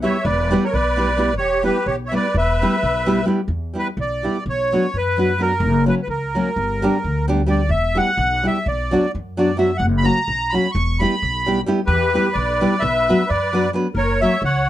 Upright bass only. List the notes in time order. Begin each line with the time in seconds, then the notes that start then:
0.25 E1
0.74 B1
1.38 E1
1.86 B1
2.34 E1
2.83 B1
3.48 E2
3.97 B1
4.46 B1
4.94 F#2
5.60 F#1
6.07 C#2
6.56 G1
7.04 D2
7.69 E1
8.17 B1
8.66 B1
9.15 F#2
9.79 F#1
10.28 B1
10.75 E1
11.22 B1
11.88 E2
12.35 B1
12.82 B1
13.30 F#2
13.95 F#1
14.42 C#2